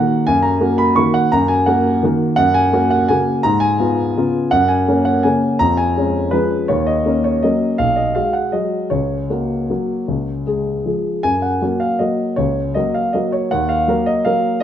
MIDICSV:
0, 0, Header, 1, 2, 480
1, 0, Start_track
1, 0, Key_signature, 6, "major"
1, 0, Tempo, 346220
1, 383, Time_signature, 3, 2, 24, 8
1, 2308, Tempo, 356506
1, 6628, Tempo, 364299
1, 10948, Tempo, 384369
1, 17188, Tempo, 367197
1, 19128, End_track
2, 0, Start_track
2, 0, Title_t, "Grand piano"
2, 0, Program_c, 0, 0
2, 0, Note_on_c, 0, 51, 35
2, 0, Note_on_c, 0, 58, 41
2, 0, Note_on_c, 0, 66, 38
2, 0, Note_on_c, 0, 78, 70
2, 341, Note_off_c, 0, 51, 0
2, 346, Note_off_c, 0, 58, 0
2, 349, Note_off_c, 0, 66, 0
2, 368, Note_on_c, 0, 80, 89
2, 380, Note_off_c, 0, 78, 0
2, 389, Note_on_c, 0, 42, 62
2, 589, Note_on_c, 0, 82, 71
2, 608, Control_c, 0, 64, 127
2, 609, Note_off_c, 0, 80, 0
2, 841, Note_on_c, 0, 58, 44
2, 844, Note_off_c, 0, 42, 0
2, 849, Note_on_c, 0, 66, 42
2, 1082, Note_on_c, 0, 83, 81
2, 1086, Note_off_c, 0, 82, 0
2, 1290, Note_off_c, 0, 58, 0
2, 1294, Note_off_c, 0, 66, 0
2, 1327, Note_on_c, 0, 85, 78
2, 1338, Note_off_c, 0, 83, 0
2, 1347, Note_on_c, 0, 51, 34
2, 1353, Note_on_c, 0, 58, 40
2, 1359, Control_c, 0, 64, 0
2, 1363, Note_on_c, 0, 66, 40
2, 1578, Note_on_c, 0, 78, 79
2, 1582, Note_off_c, 0, 85, 0
2, 1781, Note_off_c, 0, 51, 0
2, 1785, Note_off_c, 0, 58, 0
2, 1790, Note_off_c, 0, 66, 0
2, 1822, Note_off_c, 0, 78, 0
2, 1828, Note_on_c, 0, 82, 91
2, 1842, Note_on_c, 0, 42, 61
2, 2055, Note_on_c, 0, 80, 74
2, 2065, Note_off_c, 0, 82, 0
2, 2081, Control_c, 0, 64, 127
2, 2301, Note_off_c, 0, 42, 0
2, 2303, Note_off_c, 0, 80, 0
2, 2304, Note_on_c, 0, 78, 74
2, 2321, Note_on_c, 0, 58, 46
2, 2330, Note_on_c, 0, 66, 44
2, 2746, Note_off_c, 0, 58, 0
2, 2751, Note_off_c, 0, 66, 0
2, 2785, Note_off_c, 0, 78, 0
2, 2801, Note_on_c, 0, 51, 37
2, 2807, Control_c, 0, 64, 0
2, 2810, Note_on_c, 0, 58, 43
2, 2820, Note_on_c, 0, 66, 43
2, 3230, Note_off_c, 0, 51, 0
2, 3236, Note_off_c, 0, 58, 0
2, 3241, Note_off_c, 0, 66, 0
2, 3246, Note_on_c, 0, 78, 100
2, 3273, Note_on_c, 0, 42, 62
2, 3490, Note_on_c, 0, 80, 81
2, 3499, Note_off_c, 0, 78, 0
2, 3515, Control_c, 0, 64, 127
2, 3741, Note_off_c, 0, 42, 0
2, 3745, Note_on_c, 0, 58, 42
2, 3750, Note_on_c, 0, 66, 48
2, 3977, Note_on_c, 0, 78, 76
2, 3987, Note_off_c, 0, 80, 0
2, 4186, Note_off_c, 0, 58, 0
2, 4188, Note_off_c, 0, 66, 0
2, 4219, Note_on_c, 0, 80, 74
2, 4229, Note_off_c, 0, 78, 0
2, 4241, Note_on_c, 0, 49, 38
2, 4244, Note_on_c, 0, 58, 38
2, 4244, Note_on_c, 0, 66, 43
2, 4256, Control_c, 0, 64, 0
2, 4663, Note_off_c, 0, 49, 0
2, 4664, Note_off_c, 0, 58, 0
2, 4664, Note_off_c, 0, 66, 0
2, 4688, Note_on_c, 0, 82, 93
2, 4698, Note_off_c, 0, 80, 0
2, 4702, Note_on_c, 0, 44, 62
2, 4915, Note_on_c, 0, 80, 84
2, 4930, Note_off_c, 0, 82, 0
2, 4950, Control_c, 0, 64, 127
2, 5167, Note_off_c, 0, 44, 0
2, 5180, Note_on_c, 0, 59, 41
2, 5194, Note_on_c, 0, 65, 44
2, 5630, Note_off_c, 0, 59, 0
2, 5638, Note_off_c, 0, 65, 0
2, 5683, Note_on_c, 0, 49, 36
2, 5688, Note_on_c, 0, 59, 34
2, 5695, Note_on_c, 0, 65, 43
2, 5701, Control_c, 0, 64, 0
2, 6111, Note_off_c, 0, 49, 0
2, 6114, Note_off_c, 0, 59, 0
2, 6118, Note_off_c, 0, 65, 0
2, 6139, Note_on_c, 0, 78, 91
2, 6146, Note_off_c, 0, 80, 0
2, 6159, Note_on_c, 0, 42, 64
2, 6371, Note_on_c, 0, 80, 67
2, 6381, Note_off_c, 0, 78, 0
2, 6439, Control_c, 0, 64, 127
2, 6614, Note_off_c, 0, 42, 0
2, 6640, Note_on_c, 0, 58, 43
2, 6650, Note_on_c, 0, 61, 44
2, 6858, Note_off_c, 0, 80, 0
2, 6861, Note_on_c, 0, 78, 75
2, 7070, Note_off_c, 0, 58, 0
2, 7075, Note_off_c, 0, 61, 0
2, 7099, Note_on_c, 0, 80, 67
2, 7108, Note_off_c, 0, 78, 0
2, 7119, Note_on_c, 0, 49, 33
2, 7124, Control_c, 0, 64, 0
2, 7125, Note_on_c, 0, 58, 38
2, 7128, Note_on_c, 0, 61, 39
2, 7545, Note_off_c, 0, 49, 0
2, 7549, Note_off_c, 0, 58, 0
2, 7550, Note_off_c, 0, 61, 0
2, 7576, Note_on_c, 0, 82, 94
2, 7583, Note_off_c, 0, 80, 0
2, 7591, Note_on_c, 0, 41, 56
2, 7814, Note_on_c, 0, 80, 72
2, 7818, Note_off_c, 0, 82, 0
2, 7847, Control_c, 0, 64, 127
2, 8050, Note_off_c, 0, 41, 0
2, 8082, Note_on_c, 0, 56, 42
2, 8083, Note_on_c, 0, 61, 46
2, 8505, Note_off_c, 0, 56, 0
2, 8506, Note_off_c, 0, 61, 0
2, 8522, Note_on_c, 0, 71, 65
2, 8537, Note_off_c, 0, 80, 0
2, 8539, Note_on_c, 0, 56, 36
2, 8541, Note_on_c, 0, 53, 35
2, 8546, Note_on_c, 0, 61, 39
2, 8562, Control_c, 0, 64, 0
2, 8974, Note_off_c, 0, 53, 0
2, 8974, Note_off_c, 0, 56, 0
2, 8978, Note_off_c, 0, 61, 0
2, 9012, Note_on_c, 0, 73, 71
2, 9013, Note_off_c, 0, 71, 0
2, 9029, Note_on_c, 0, 39, 53
2, 9251, Note_on_c, 0, 75, 62
2, 9254, Control_c, 0, 64, 127
2, 9255, Note_off_c, 0, 73, 0
2, 9491, Note_off_c, 0, 39, 0
2, 9509, Note_on_c, 0, 58, 38
2, 9517, Note_on_c, 0, 61, 45
2, 9743, Note_off_c, 0, 75, 0
2, 9748, Note_on_c, 0, 73, 66
2, 9949, Note_off_c, 0, 58, 0
2, 9954, Note_off_c, 0, 61, 0
2, 9990, Note_on_c, 0, 75, 60
2, 9996, Note_off_c, 0, 73, 0
2, 10006, Note_on_c, 0, 54, 33
2, 10010, Note_on_c, 0, 58, 31
2, 10011, Control_c, 0, 64, 0
2, 10013, Note_on_c, 0, 61, 37
2, 10431, Note_off_c, 0, 54, 0
2, 10433, Note_off_c, 0, 58, 0
2, 10434, Note_off_c, 0, 61, 0
2, 10462, Note_on_c, 0, 77, 76
2, 10470, Note_off_c, 0, 75, 0
2, 10474, Note_on_c, 0, 35, 50
2, 10696, Note_on_c, 0, 75, 56
2, 10700, Note_off_c, 0, 77, 0
2, 10700, Control_c, 0, 64, 127
2, 10934, Note_off_c, 0, 35, 0
2, 10942, Note_on_c, 0, 77, 67
2, 10943, Note_off_c, 0, 75, 0
2, 10956, Note_on_c, 0, 56, 33
2, 10958, Note_on_c, 0, 66, 38
2, 10966, Control_c, 0, 64, 0
2, 11174, Note_on_c, 0, 78, 57
2, 11183, Note_off_c, 0, 77, 0
2, 11384, Note_off_c, 0, 56, 0
2, 11385, Note_off_c, 0, 66, 0
2, 11409, Note_on_c, 0, 75, 51
2, 11421, Note_off_c, 0, 78, 0
2, 11423, Note_on_c, 0, 54, 29
2, 11430, Note_on_c, 0, 56, 28
2, 11436, Note_on_c, 0, 66, 32
2, 11852, Note_off_c, 0, 54, 0
2, 11856, Note_off_c, 0, 56, 0
2, 11859, Note_off_c, 0, 66, 0
2, 11883, Note_on_c, 0, 73, 57
2, 11892, Note_off_c, 0, 75, 0
2, 11899, Note_on_c, 0, 37, 46
2, 12194, Control_c, 0, 64, 127
2, 12365, Note_off_c, 0, 37, 0
2, 12385, Note_on_c, 0, 58, 31
2, 12388, Note_on_c, 0, 66, 32
2, 12834, Note_off_c, 0, 58, 0
2, 12836, Note_off_c, 0, 66, 0
2, 12879, Note_on_c, 0, 54, 29
2, 12884, Note_on_c, 0, 58, 27
2, 12891, Note_on_c, 0, 66, 29
2, 12892, Control_c, 0, 64, 0
2, 13310, Note_off_c, 0, 54, 0
2, 13313, Note_off_c, 0, 58, 0
2, 13317, Note_off_c, 0, 66, 0
2, 13360, Note_on_c, 0, 37, 39
2, 13573, Control_c, 0, 64, 127
2, 13815, Note_off_c, 0, 37, 0
2, 13840, Note_on_c, 0, 56, 30
2, 13841, Note_on_c, 0, 68, 33
2, 14278, Note_off_c, 0, 56, 0
2, 14278, Note_off_c, 0, 68, 0
2, 14327, Note_on_c, 0, 53, 26
2, 14331, Note_on_c, 0, 56, 26
2, 14332, Control_c, 0, 64, 0
2, 14341, Note_on_c, 0, 68, 26
2, 14561, Note_off_c, 0, 73, 0
2, 14763, Note_off_c, 0, 53, 0
2, 14765, Note_off_c, 0, 56, 0
2, 14771, Note_off_c, 0, 68, 0
2, 14794, Note_on_c, 0, 80, 80
2, 14809, Note_on_c, 0, 42, 41
2, 15032, Note_off_c, 0, 80, 0
2, 15032, Note_on_c, 0, 78, 45
2, 15041, Control_c, 0, 64, 127
2, 15260, Note_off_c, 0, 42, 0
2, 15278, Note_on_c, 0, 54, 30
2, 15280, Note_on_c, 0, 58, 30
2, 15288, Note_on_c, 0, 66, 35
2, 15289, Control_c, 0, 64, 0
2, 15501, Note_on_c, 0, 77, 57
2, 15510, Note_off_c, 0, 78, 0
2, 15709, Note_off_c, 0, 54, 0
2, 15710, Note_off_c, 0, 58, 0
2, 15714, Note_off_c, 0, 66, 0
2, 15738, Note_on_c, 0, 75, 48
2, 15749, Note_off_c, 0, 77, 0
2, 15751, Note_on_c, 0, 54, 26
2, 15762, Note_on_c, 0, 58, 26
2, 15763, Note_on_c, 0, 66, 31
2, 16181, Note_off_c, 0, 54, 0
2, 16186, Note_off_c, 0, 58, 0
2, 16187, Note_off_c, 0, 66, 0
2, 16207, Note_on_c, 0, 73, 65
2, 16222, Note_off_c, 0, 75, 0
2, 16229, Note_on_c, 0, 37, 45
2, 16468, Control_c, 0, 64, 127
2, 16682, Note_on_c, 0, 75, 59
2, 16689, Note_off_c, 0, 37, 0
2, 16692, Note_off_c, 0, 73, 0
2, 16699, Note_on_c, 0, 54, 34
2, 16702, Note_on_c, 0, 58, 31
2, 16714, Note_on_c, 0, 66, 35
2, 16717, Control_c, 0, 64, 0
2, 16932, Note_on_c, 0, 77, 55
2, 16934, Note_off_c, 0, 75, 0
2, 17137, Note_off_c, 0, 54, 0
2, 17139, Note_off_c, 0, 58, 0
2, 17145, Note_off_c, 0, 66, 0
2, 17162, Note_on_c, 0, 75, 55
2, 17177, Note_on_c, 0, 54, 30
2, 17181, Note_off_c, 0, 77, 0
2, 17187, Note_on_c, 0, 58, 31
2, 17190, Note_on_c, 0, 66, 33
2, 17417, Note_on_c, 0, 73, 60
2, 17423, Note_off_c, 0, 75, 0
2, 17620, Note_off_c, 0, 54, 0
2, 17626, Note_off_c, 0, 58, 0
2, 17628, Note_off_c, 0, 66, 0
2, 17661, Note_on_c, 0, 78, 80
2, 17666, Note_off_c, 0, 73, 0
2, 17672, Note_on_c, 0, 39, 51
2, 17893, Note_on_c, 0, 77, 65
2, 17903, Note_off_c, 0, 78, 0
2, 17917, Control_c, 0, 64, 127
2, 18132, Note_off_c, 0, 39, 0
2, 18140, Note_on_c, 0, 54, 41
2, 18149, Note_on_c, 0, 58, 39
2, 18155, Note_on_c, 0, 70, 42
2, 18159, Control_c, 0, 64, 0
2, 18380, Note_off_c, 0, 77, 0
2, 18381, Note_on_c, 0, 75, 69
2, 18581, Note_off_c, 0, 54, 0
2, 18586, Note_off_c, 0, 58, 0
2, 18590, Note_off_c, 0, 70, 0
2, 18622, Note_on_c, 0, 77, 66
2, 18630, Note_off_c, 0, 75, 0
2, 18633, Note_on_c, 0, 54, 34
2, 18644, Note_on_c, 0, 58, 36
2, 18644, Note_on_c, 0, 70, 37
2, 19061, Note_off_c, 0, 54, 0
2, 19067, Note_off_c, 0, 58, 0
2, 19067, Note_off_c, 0, 70, 0
2, 19103, Note_off_c, 0, 77, 0
2, 19128, End_track
0, 0, End_of_file